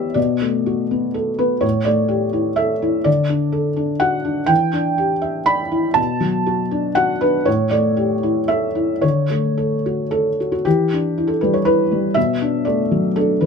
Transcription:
0.00 0.12 E3 soft
0.00 0.20 B3 soft
0.00 0.19 G4 soft
0.00 0.19 B4 soft
0.00 0.19 C#5 medium
0.00 0.14 D5 medium
0.00 0.16 E5 medium
0.14 1.59 B2 medium
0.14 1.14 D5 medium
0.41 0.81 A3 soft
0.66 1.05 F#4 soft
0.91 1.30 B3 soft
1.14 1.53 A4 soft
1.39 1.63 B3 soft
1.39 1.63 B4 medium
1.61 3.02 A2 medium
1.61 1.86 C#5 medium
1.85 2.25 A3 soft
1.85 2.57 D5 medium
2.08 2.48 G4 soft
2.33 2.72 E4 soft
2.56 2.97 A4 soft
2.56 3.06 E5 medium
2.82 3.07 E4 soft
3.04 4.45 D3 medium
3.04 4.01 D5 medium
3.29 3.68 D4 soft
3.52 3.91 A4 soft
3.76 4.16 D4 soft
4.00 4.40 F#4 soft
4.00 4.49 F#5 medium
4.25 4.49 D4 soft
4.46 5.92 E3 medium
4.46 5.46 G5 medium
4.72 5.13 D4 soft
4.98 5.38 G4 soft
5.22 5.62 E5 soft
5.46 5.87 D5 soft
5.46 5.96 B5 medium
5.71 5.97 E4 soft
5.94 7.42 B2 medium
5.94 6.95 A5 medium
6.20 6.61 F#3 medium
6.46 6.87 F#4 medium
6.71 7.12 D4 soft
6.95 7.37 F#4 medium
6.95 7.21 F#5 medium
7.21 7.47 D4 soft
7.21 7.46 B4 medium
7.45 8.99 A2 medium
7.45 7.71 C#5 medium
7.70 8.12 A3 soft
7.70 8.48 D5 medium
7.97 8.38 G4 soft
8.23 8.65 E4 soft
8.48 8.92 A4 soft
8.48 9.02 E5 medium
8.75 9.03 E4 soft
9.01 10.61 D3 soft
9.01 10.38 C#5 medium
9.30 9.74 A3 soft
9.57 10.01 A4 soft
9.86 10.28 F#4 soft
10.11 10.55 A4 medium
10.40 10.50 F#4 soft
10.52 10.65 F#4 soft
10.65 12.13 E3 medium
10.65 11.29 G4 medium
10.93 11.33 D4 soft
11.18 11.57 E4 soft
11.27 11.41 A4 medium
11.41 11.82 G3 soft
11.41 11.54 B4 medium
11.54 11.66 C#5 medium
11.65 12.06 E4 soft
11.65 12.15 B4 medium
11.92 12.16 G3 soft
12.14 13.46 B2 medium
12.14 12.65 E5 medium
12.41 12.82 D4 soft
12.65 13.07 A3 soft
12.65 13.16 D5 medium
12.91 13.32 F#3 soft
13.16 13.46 D4 soft
13.16 13.41 A4 medium
13.41 13.46 F#3 soft
13.41 13.46 B4 medium

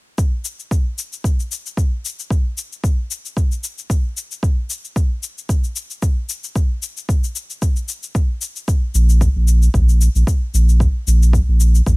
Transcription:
0.18 kick medium
0.18 cabasa soft
0.45 cabasa medium
0.59 cabasa soft
0.71 kick medium
0.71 cabasa soft
0.98 cabasa medium
1.13 cabasa soft
1.24 kick medium
1.24 cabasa soft
1.40 cabasa soft
1.52 cabasa medium
1.66 cabasa soft
1.77 kick medium
1.77 cabasa soft
2.05 cabasa medium
2.19 cabasa soft
2.30 kick loud
2.30 cabasa soft
2.58 cabasa medium
2.72 cabasa soft
2.84 kick loud
2.84 cabasa soft
3.11 cabasa medium
3.25 cabasa soft
3.37 kick medium
3.37 cabasa soft
3.52 cabasa soft
3.64 cabasa medium
3.78 cabasa soft
3.90 kick medium
3.90 cabasa soft
4.17 cabasa medium
4.31 cabasa soft
4.43 kick loud
4.43 cabasa soft
4.70 cabasa medium
4.85 cabasa soft
4.96 kick loud
4.96 cabasa soft
5.23 cabasa medium
5.38 cabasa soft
5.49 kick medium
5.49 cabasa soft
5.64 cabasa soft
5.76 cabasa medium
5.90 cabasa soft
6.02 kick medium
6.02 cabasa soft
6.29 cabasa medium
6.44 cabasa soft
6.56 kick loud
6.56 cabasa soft
6.83 cabasa medium
6.97 cabasa soft
7.09 kick loud
7.09 cabasa soft
7.24 cabasa soft
7.36 cabasa medium
7.50 cabasa soft
7.62 kick medium
7.62 cabasa soft
7.76 cabasa soft
7.89 cabasa medium
8.03 cabasa soft
8.15 kick loud
8.15 cabasa soft
8.41 cabasa medium
8.56 cabasa soft
8.68 kick loud
8.68 cabasa soft
8.94 9.29 A#1 loud
8.94 cabasa medium
9.10 cabasa soft
9.21 kick medium
9.21 cabasa soft
9.35 9.68 A#1 medium
9.48 cabasa medium
9.63 cabasa soft
9.74 10.08 A#1 medium
9.74 kick medium
9.74 cabasa soft
9.89 cabasa soft
10.01 cabasa medium
10.15 10.24 A#1 medium
10.15 cabasa soft
10.27 kick loud
10.27 cabasa soft
10.54 10.88 A#1 medium
10.54 cabasa medium
10.69 cabasa soft
10.80 kick loud
10.80 cabasa soft
11.07 11.41 A#1 loud
11.07 cabasa medium
11.23 cabasa soft
11.33 kick medium
11.33 cabasa soft
11.48 11.81 A#1 medium
11.60 cabasa medium
11.75 cabasa soft
11.86 11.97 A#1 medium
11.86 kick medium
11.86 cabasa soft

